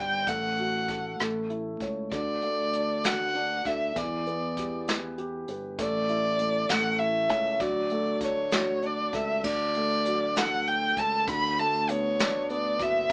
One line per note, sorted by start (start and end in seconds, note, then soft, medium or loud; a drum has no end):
0.00 0.25 G1 medium
0.00 0.30 G3 medium
0.00 0.29 D4 soft
0.00 0.29 B4 soft
0.00 0.30 G5 medium
0.27 1.15 A1 medium
0.27 1.17 A3 medium
0.27 1.20 F#5 medium
0.27 kick medium
0.27 closed hi-hat medium
0.57 1.18 F#4 soft
0.57 closed hi-hat soft
0.88 1.19 A4 soft
0.88 kick medium
0.88 closed hi-hat medium
1.19 1.77 A1 medium
1.19 2.10 A3 soft
1.19 cross-stick medium
1.19 closed hi-hat medium
1.50 2.10 E4 soft
1.50 closed hi-hat soft
1.80 2.10 C#2 medium
1.80 2.11 C#5 soft
1.80 kick medium
1.80 closed hi-hat medium
2.12 3.62 D2 medium
2.12 3.92 D3 medium
2.12 3.06 D5 medium
2.12 kick medium
2.12 closed hi-hat medium
2.42 3.62 A3 soft
2.42 closed hi-hat soft
2.73 3.33 D4 soft
2.73 closed hi-hat medium
3.04 3.94 F#4 soft
3.04 3.68 F#5 medium
3.04 snare medium
3.04 closed hi-hat medium
3.35 3.94 D4 medium
3.35 closed hi-hat soft
3.65 3.94 D2 medium
3.65 3.96 A4 soft
3.65 3.99 E5 medium
3.65 kick medium
3.65 closed hi-hat medium
3.95 5.44 E2 medium
3.95 5.74 E3 medium
3.95 4.88 D5 medium
3.95 kick medium
3.95 closed hi-hat medium
4.26 5.45 B3 medium
4.26 closed hi-hat soft
4.57 5.17 G4 soft
4.57 kick medium
4.57 closed hi-hat medium
4.88 5.47 B4 medium
4.88 snare medium
4.88 closed hi-hat medium
5.18 5.77 G4 medium
5.18 closed hi-hat soft
5.48 5.77 G1 medium
5.48 5.78 B4 soft
5.48 closed hi-hat medium
5.79 6.66 A1 loud
5.79 6.38 A3 medium
5.79 6.70 D5 loud
5.79 kick loud
5.79 closed hi-hat medium
6.09 6.68 E4 soft
6.09 closed hi-hat soft
6.39 6.68 A3 soft
6.39 closed hi-hat medium
6.69 7.30 A1 medium
6.69 7.58 A3 medium
6.69 7.00 F#5 medium
6.69 snare medium
6.69 closed hi-hat medium
6.98 7.59 E4 medium
6.98 7.62 E5 medium
6.98 closed hi-hat soft
7.29 7.58 C#2 medium
7.29 7.59 C#5 soft
7.29 kick medium
7.29 closed hi-hat medium
7.60 9.09 D2 medium
7.60 9.40 F#3 medium
7.60 8.21 D5 medium
7.60 kick medium
7.60 closed hi-hat medium
7.89 9.10 A3 medium
7.89 closed hi-hat soft
8.21 8.81 D4 soft
8.21 8.87 C#5 medium
8.21 kick medium
8.21 closed hi-hat medium
8.51 9.42 F#4 medium
8.51 snare medium
8.51 closed hi-hat medium
8.82 9.42 D4 medium
8.82 9.16 D5 medium
8.82 closed hi-hat soft
9.13 9.42 C#2 medium
9.13 9.43 A4 medium
9.13 9.45 E5 medium
9.13 kick medium
9.13 closed hi-hat medium
9.44 10.93 D2 loud
9.44 11.24 D4 medium
9.44 10.39 D5 loud
9.44 kick medium
9.44 crash medium
9.74 10.94 A3 soft
9.74 closed hi-hat soft
10.05 11.25 F#3 medium
10.05 closed hi-hat medium
10.36 10.97 A4 medium
10.36 10.69 F#5 medium
10.36 snare medium
10.36 closed hi-hat medium
10.67 11.00 G5 medium
10.67 closed hi-hat soft
10.97 11.26 C#2 medium
10.97 11.27 A4 medium
10.97 11.28 A5 medium
10.97 kick medium
10.97 closed hi-hat medium
11.28 12.76 D2 loud
11.28 13.06 D3 medium
11.28 11.61 B5 loud
11.28 kick loud
11.28 closed hi-hat medium
11.58 12.77 A3 soft
11.58 11.92 A5 medium
11.58 closed hi-hat soft
11.89 12.49 B3 soft
11.89 12.50 C#5 medium
11.89 closed hi-hat medium
12.19 13.08 D4 medium
12.19 snare medium
12.19 closed hi-hat medium
12.50 13.09 B3 medium
12.50 12.84 D5 medium
12.50 closed hi-hat soft
12.79 13.08 F#1 medium
12.79 13.09 F#4 medium
12.79 13.11 E5 loud
12.79 kick medium
12.79 closed hi-hat medium